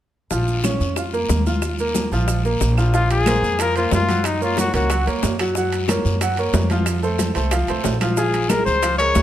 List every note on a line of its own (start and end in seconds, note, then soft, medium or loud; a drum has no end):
0.31 0.77 A#1 medium
0.31 0.58 F3 medium
0.31 0.58 F4 medium
0.31 high bongo medium
0.31 high conga soft
0.31 long guiro medium
0.31 maracas medium
0.48 high conga soft
0.48 maracas soft
0.64 0.91 C#4 medium
0.64 0.91 C#5 medium
0.64 high bongo medium
0.64 high conga medium
0.64 short guiro medium
0.64 claves medium
0.64 maracas medium
0.80 1.26 F2 medium
0.80 high conga soft
0.80 short guiro medium
0.80 maracas soft
0.96 1.10 F4 medium
0.96 1.11 F5 medium
0.96 high bongo medium
0.96 high conga soft
0.96 long guiro medium
0.96 claves medium
0.96 maracas medium
1.13 1.40 A#3 medium
1.13 1.40 A#4 medium
1.13 high conga soft
1.13 maracas soft
1.29 2.06 D#2 medium
1.29 high bongo medium
1.29 low bongo medium
1.29 high conga medium
1.29 short guiro medium
1.29 maracas medium
1.46 1.73 F4 medium
1.46 1.74 F5 medium
1.46 high conga medium
1.46 short guiro medium
1.46 maracas soft
1.62 high bongo medium
1.62 high conga soft
1.62 long guiro medium
1.62 claves medium
1.62 maracas medium
1.79 2.06 A#3 medium
1.79 2.07 A#4 medium
1.79 high conga soft
1.79 maracas soft
1.95 high bongo medium
1.95 high conga medium
1.95 short guiro medium
1.95 maracas medium
2.12 2.58 A#1 medium
2.12 2.39 F3 medium
2.12 2.40 F4 medium
2.12 high bongo soft
2.12 high conga soft
2.12 short guiro medium
2.12 maracas soft
2.28 high bongo medium
2.28 high conga soft
2.28 long guiro medium
2.28 claves medium
2.28 maracas medium
2.45 2.72 A#3 medium
2.45 2.72 A#4 medium
2.45 high bongo soft
2.45 high conga soft
2.45 maracas soft
2.61 3.37 A#1 medium
2.61 high bongo medium
2.61 low bongo medium
2.61 high conga soft
2.61 short guiro medium
2.61 maracas medium
2.78 2.91 F3 medium
2.78 2.91 F4 medium
2.78 high bongo soft
2.78 short guiro medium
2.78 claves medium
2.78 maracas soft
2.94 3.21 F3 medium
2.94 3.21 F4 medium
2.94 3.10 F4 medium
2.94 3.21 F5 medium
2.94 high bongo medium
2.94 high conga soft
2.94 long guiro medium
2.94 maracas medium
3.10 3.62 G#4 medium
3.10 high conga soft
3.10 high timbale medium
3.10 maracas soft
3.26 3.53 A#3 medium
3.26 3.54 A#4 medium
3.26 3.54 C5 medium
3.26 high bongo medium
3.26 high conga medium
3.26 high timbale medium
3.26 low timbale medium
3.26 short guiro medium
3.26 claves medium
3.26 maracas medium
3.43 3.88 F2 medium
3.43 high conga soft
3.43 short guiro medium
3.43 maracas soft
3.59 3.73 F3 medium
3.59 3.73 F4 medium
3.59 3.77 A#4 loud
3.59 3.73 F5 medium
3.59 high bongo medium
3.59 high conga soft
3.59 high timbale medium
3.59 long guiro medium
3.59 claves medium
3.59 maracas medium
3.76 4.03 A#3 medium
3.76 3.92 F4 medium
3.76 4.03 A#4 medium
3.76 4.03 C5 medium
3.76 high conga soft
3.76 high timbale medium
3.76 maracas soft
3.91 4.68 F#2 medium
3.91 4.27 F4 medium
3.91 high bongo medium
3.91 low bongo medium
3.91 high conga medium
3.91 low timbale medium
3.91 short guiro medium
3.91 maracas medium
4.09 4.35 F#3 medium
4.09 4.36 F#4 medium
4.09 4.36 F#5 medium
4.09 high conga medium
4.09 high timbale medium
4.09 short guiro medium
4.09 maracas soft
4.24 4.42 D#4 medium
4.24 high bongo medium
4.24 high conga soft
4.24 high timbale medium
4.24 long guiro medium
4.24 claves medium
4.24 maracas medium
4.41 4.68 A#3 medium
4.41 4.58 F4 medium
4.41 4.68 A#4 medium
4.41 4.68 C#5 medium
4.41 high conga soft
4.41 maracas soft
4.57 4.74 F#4 medium
4.57 high bongo medium
4.57 high conga medium
4.57 high timbale medium
4.57 low timbale medium
4.57 short guiro medium
4.57 maracas medium
4.73 5.04 C#2 medium
4.73 4.87 A#3 medium
4.73 5.05 F#4 medium
4.73 4.88 A#4 medium
4.73 4.88 C#5 medium
4.73 high bongo soft
4.73 high conga soft
4.73 high timbale medium
4.73 short guiro medium
4.73 maracas soft
4.90 5.04 F#3 medium
4.90 5.04 F#4 medium
4.90 5.04 F#5 medium
4.90 high bongo medium
4.90 high conga soft
4.90 high timbale medium
4.90 long guiro medium
4.90 claves medium
4.90 maracas medium
5.06 5.22 F2 medium
5.06 5.34 A#3 medium
5.06 5.34 A#4 medium
5.06 5.34 C#5 medium
5.06 high bongo soft
5.06 high conga soft
5.06 high timbale medium
5.06 maracas soft
5.23 5.99 F#2 medium
5.23 high bongo medium
5.23 low bongo medium
5.23 high conga soft
5.23 low timbale medium
5.23 short guiro medium
5.23 maracas medium
5.39 5.53 F#3 medium
5.39 5.54 F#4 medium
5.39 5.54 F#5 medium
5.39 high bongo soft
5.39 high timbale medium
5.39 short guiro medium
5.39 claves medium
5.39 maracas soft
5.55 5.83 F#3 medium
5.55 5.84 F#4 medium
5.55 5.84 F#5 medium
5.55 high bongo medium
5.55 high conga soft
5.55 long guiro medium
5.55 maracas medium
5.73 high conga soft
5.73 high timbale medium
5.73 maracas soft
5.88 6.16 A#3 medium
5.88 6.16 A#4 medium
5.88 6.16 C#5 medium
5.88 high bongo medium
5.88 high conga medium
5.88 high timbale medium
5.88 low timbale medium
5.88 short guiro medium
5.88 claves medium
5.88 maracas medium
6.05 6.51 F#2 medium
6.05 high conga soft
6.05 short guiro medium
6.05 maracas soft
6.21 6.35 F#3 medium
6.21 6.35 F#4 medium
6.21 6.35 F#5 medium
6.21 high bongo medium
6.21 high conga soft
6.21 high timbale medium
6.21 long guiro medium
6.21 claves medium
6.21 maracas medium
6.37 6.65 A#3 medium
6.37 6.65 A#4 medium
6.37 6.65 C#5 medium
6.37 high conga soft
6.37 high timbale medium
6.37 maracas soft
6.54 7.30 F2 loud
6.54 high bongo medium
6.54 low bongo medium
6.54 high conga medium
6.54 low timbale medium
6.54 short guiro medium
6.54 maracas medium
6.70 6.97 F3 medium
6.70 6.98 F4 medium
6.70 6.98 F5 medium
6.70 high conga medium
6.70 high timbale medium
6.70 short guiro medium
6.70 maracas soft
6.86 high bongo medium
6.86 high timbale medium
6.86 long guiro medium
6.86 claves medium
6.86 maracas medium
7.03 7.30 A3 medium
7.03 7.30 A4 medium
7.03 7.30 C5 medium
7.03 high conga soft
7.03 maracas soft
7.19 high bongo medium
7.19 high conga medium
7.19 high timbale medium
7.19 low timbale medium
7.19 short guiro medium
7.19 maracas medium
7.35 7.66 C2 medium
7.35 7.49 A3 medium
7.35 7.49 A4 medium
7.35 7.49 C5 medium
7.35 high bongo soft
7.35 high conga soft
7.35 high timbale medium
7.35 short guiro medium
7.35 maracas soft
7.51 7.66 F3 medium
7.51 7.66 F4 medium
7.51 7.66 F5 medium
7.51 high bongo medium
7.51 high timbale medium
7.51 long guiro medium
7.51 claves medium
7.51 maracas medium
7.68 7.84 C2 medium
7.68 7.96 A3 medium
7.68 7.96 A4 medium
7.68 7.96 C5 medium
7.68 high bongo soft
7.68 high conga soft
7.68 high timbale medium
7.68 maracas soft
7.84 8.61 A#1 medium
7.84 high bongo medium
7.84 low bongo medium
7.84 high conga soft
7.84 low timbale medium
7.84 short guiro medium
7.84 maracas medium
8.01 8.15 F3 medium
8.01 8.15 F4 medium
8.01 8.15 F5 medium
8.01 high bongo soft
8.01 high conga medium
8.01 high timbale medium
8.01 short guiro medium
8.01 claves medium
8.01 maracas soft
8.17 8.44 F3 medium
8.17 8.44 F4 medium
8.17 8.51 G#4 medium
8.17 8.45 F5 medium
8.17 high bongo medium
8.17 high conga soft
8.17 long guiro medium
8.17 maracas medium
8.34 high conga soft
8.34 high timbale medium
8.34 maracas soft
8.50 8.77 G#3 medium
8.50 8.77 G#4 medium
8.50 8.65 A#4 medium
8.50 8.77 A#4 medium
8.50 high bongo medium
8.50 high conga loud
8.50 high timbale medium
8.50 low timbale soft
8.50 short guiro medium
8.50 claves medium
8.50 maracas medium
8.66 9.12 C#2 medium
8.66 8.97 C5 medium
8.66 high conga soft
8.66 short guiro medium
8.66 maracas soft
8.82 8.96 F3 medium
8.82 8.96 F4 medium
8.82 8.97 F5 medium
8.82 high bongo medium
8.82 high conga soft
8.82 high timbale medium
8.82 long guiro medium
8.82 claves medium
8.82 maracas medium
8.98 9.22 G#3 medium
8.98 9.22 G#4 medium
8.98 9.22 A#4 medium
8.98 9.22 C#5 medium
8.98 high conga soft
8.98 high timbale medium
8.98 maracas soft
9.15 9.22 D#2 medium
9.15 high bongo medium
9.15 low bongo medium
9.15 high conga medium
9.15 low timbale medium
9.15 short guiro medium
9.15 maracas medium